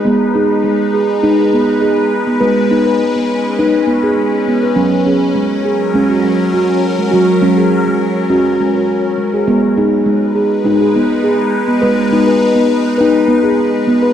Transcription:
<<
  \new Staff \with { instrumentName = "Ambient pad" } { \time 4/4 \key gis \minor \tempo 4 = 102 << { <gis b'>1~ | <gis b'>1 | <fis ais'>1~ | <fis ais'>1 |
<gis b'>1~ | <gis b'>1 | } \\ { dis'1 | cis'1~ | cis'1~ | cis'1 |
dis'1~ | dis'1 | } >> }
  \new Staff \with { instrumentName = "Steel tongue drum" } { \time 4/4 \key gis \minor << { b8 gis'8 gis8 gis'8 gis16 gis'16 b8 gis'8 r16 b16 | b'8 b16 b'8 b8 r16 b'8 b16 gis'8 r16 b16 b'16 | cis'8 gis'8 gis8 gis'8 gis16 fis'16 gis8 fis'8 r16 gis16 | fis'8 gis16 gis'8 gis8 r16 fis'8 gis16 fis'8 r16 gis16 gis'16 |
b8 gis'8 gis8 gis'8 gis16 gis'16 b8 gis'8 r16 b16 | b'8 b16 b'8 b8 r16 b'8 b16 gis'8 r16 b16 b'16 | } \\ { gis8 dis'4. dis'2 | gis8 dis'4. dis'2 | fis8 cis'4. cis'2 | fis8 cis'4. cis'2 |
gis8 dis'4. dis'2 | gis8 dis'4. dis'2 | } >> }
>>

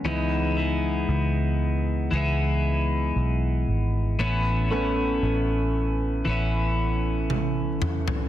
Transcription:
<<
  \new Staff \with { instrumentName = "Clean electric guitar" } { \time 4/4 \key cis \minor \tempo 4 = 58 <cis e gis b e'>8 <gis b e'>4. <e gis b e'>2 | <a, e b cis' e'>8 <b cis' e'>4. <e b cis' e'>2 | }
  \new Staff \with { instrumentName = "Grand piano" } { \time 4/4 \key cis \minor <e b dis'>1 | r8 <a b cis'>2.~ <a b cis'>8 | }
  \new Staff \with { instrumentName = "Fingered electric bass" } { \clef bass \time 4/4 \key cis \minor cis,4 cis,4 cis,4 b,,8 gis,,8 | a,,4 a,,4 a,,4. r8 | }
  \new DrumStaff \with { instrumentName = "Drums" } \drummode { \time 4/4 r4 r4 r4 r4 | r4 r4 r4 tommh8 toml16 tomfh16 | }
>>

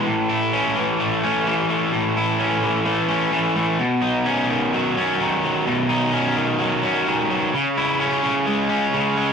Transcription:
\new Staff \with { instrumentName = "Overdriven electric guitar" } { \clef bass \time 4/4 \key b \mixolydian \tempo 4 = 129 a,8 e'8 cis'8 e8 a8 cis'8 e8 a8 | a,8 e'8 cis'8 e8 a8 cis'8 e8 a8 | b,8 dis'8 cis'8 dis8 fis8 cis'8 dis8 fis8 | b,8 dis'8 cis'8 dis8 fis8 cis'8 dis8 fis8 |
cis8 e'8 cis'8 cis8 gis8 cis'8 cis8 gis8 | }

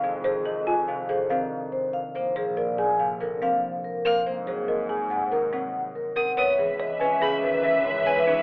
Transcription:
<<
  \new Staff \with { instrumentName = "Violin" } { \time 5/4 \key aes \lydian \tempo 4 = 142 r1 r4 | r1 r8 f'''8 | r1 r8 ees'''8 | \key cis \minor dis'''8 r4. b''8 r4. gis''8 r8 | }
  \new Staff \with { instrumentName = "Vibraphone" } { \time 5/4 \key aes \lydian r8 aes'8 ees''8 aes''8 f''8 c''8 f''8 r8 c''8 f''8 | c''8 aes'8 d''8 aes''8 f''8 bes'8 f''8 r8 bes'8 f''8 | c''8 aes'8 ees''8 aes''8 ges''8 bes'8 ges''8 r8 bes'8 ges''8 | \key cis \minor cis''8 gis'8 dis''8 gis''8 e''8 b'8 e''8 cis''8 b'8 e''8 | }
  \new Staff \with { instrumentName = "String section" } { \time 5/4 \key aes \lydian r1 r4 | r1 r4 | r1 r4 | \key cis \minor <b' e''>1~ <b' e''>4 | }
  \new Staff \with { instrumentName = "Marimba" } { \time 5/4 \key aes \lydian r8 c''8 aes'8 f'8 r8 aes'8 c'8 r4. | r8 c''8 bes'8 aes'8 r8 bes'8 c'8 r4 bes'8 | r8 c''8 bes'8 aes'8 r8 bes'8 c'8 r4 bes'8 | \key cis \minor b'8 r8 cis''8 b'8 gis'8 r8 b'8 cis'8 r8 dis'8 | }
  \new Staff \with { instrumentName = "Harp" } { \clef bass \time 5/4 \key aes \lydian <c d ees f aes>8 ees4. c8 d8 ees2 | bes8 f4. c8 d8 f4. c'8 | bes8 ges4. c8 ees8 ges4. c'8 | \key cis \minor b8 e4 cis'8 cis8 dis8 e4 e8 cis'8 | }
  \new Staff \with { instrumentName = "Double bass section" } { \clef bass \time 5/4 \key aes \lydian f,1~ f,4 | bes,,1~ bes,,4 | aes,1~ aes,4 | \key cis \minor cis,1~ cis,4 | }
>>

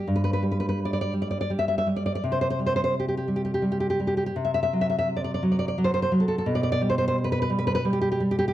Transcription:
\new Staff \with { instrumentName = "Nylon-string guitar" } { \time 3/4 \key g \major \tempo 4 = 85 << { r32 b'32 b'32 b'32 r32 b'32 b'32 b'32 r32 d''32 d''32 d''32 r32 d''32 d''32 d''32 r32 e''32 e''32 e''32 r32 d''32 d''32 d''32 | r32 c''32 c''32 c''32 r32 c''32 c''32 c''32 r32 g'32 g'32 g'32 r32 g'32 g'32 g'32 r32 g'32 g'32 g'32 r32 g'32 g'32 g'32 | r32 e''32 e''32 e''32 r32 e''32 e''32 e''32 r32 d''32 d''32 d''32 r32 d''32 d''32 d''32 r32 c''32 c''32 c''32 r32 a'32 a'32 a'32 | r32 d''32 d''32 d''32 r32 c''32 c''32 c''32 r32 b'32 b'32 b'32 r32 b'32 b'32 b'32 r32 g'32 g'32 g'32 r32 g'32 g'32 g'32 | } \\ { g,8 g4 g8 g8 g8 | c8 g4 g8 g8 g8 | c8 fis4 fis8 fis8 fis8 | b,8 g4 g8 g8 g8 | } >> }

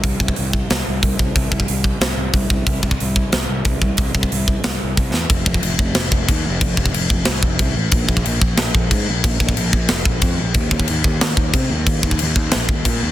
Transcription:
<<
  \new Staff \with { instrumentName = "Picked electric bass" } { \clef bass \time 4/4 \key bes \mixolydian \tempo 4 = 183 c,8 c,8 c,4 c,8 c,8 c,8 c,8 | c,8 c,8 c,4 c,8 c,8 c,8 c,8 | c,8 c,8 c,4 c,8 c,8 c,8 c,8 | c,8 c,8 c,4 c,8 c,8 c,8 e,8 |
f,,8 f,,8 f,,8 f,,8 f,,8 f,,8 ees,8 f,,8 | f,,8 f,,8 f,,8 f,,8 c,8 f,,8 c,8 a,,8 | bes,,8 bes,,8 bes,,8 bes,,8 bes,,8 bes,,8 aes,8 bes,,8 | bes,,8 bes,,8 bes,,8 bes,,8 f,,8 bes,,8 f,8 bes,,8 |
ees,8 ees,8 ees,8 ees,8 ees,8 ees,8 c8 ees,8 | ees,8 ees,8 ees,8 ees,8 bes,,8 ees,8 bes,8 ees,8 | }
  \new DrumStaff \with { instrumentName = "Drums" } \drummode { \time 4/4 <hho bd>8 bd16 bd16 hho8 bd8 <hho sn>4 <hho bd>8 bd8 | <hho bd>8 bd16 bd16 hho8 bd8 <hho sn>4 <hho bd>8 bd8 | <hho bd>8 bd16 bd16 hho8 bd8 <hho sn>4 <hho bd>8 bd8 | <hho bd>8 bd16 bd16 hho8 bd8 <hho sn>4 <hho bd>8 sn8 |
<cymc bd>8 bd16 bd16 cymc8 bd8 <cymc sn>8 bd8 <cymc bd>4 | <cymc bd>8 bd16 bd16 cymc8 bd8 <cymc sn>8 bd8 <cymc bd>4 | <cymc bd>8 bd16 bd16 cymc8 bd8 <cymc sn>8 bd8 <cymc bd>4 | <cymc bd>8 bd16 bd16 cymc8 bd8 <cymc sn>8 bd8 <cymc bd>4 |
<cymc bd>8 bd16 bd16 cymc8 bd8 <cymc sn>8 bd8 <cymc bd>4 | <cymc bd>8 bd16 bd16 cymc8 bd8 <cymc sn>8 bd8 <cymc bd>4 | }
>>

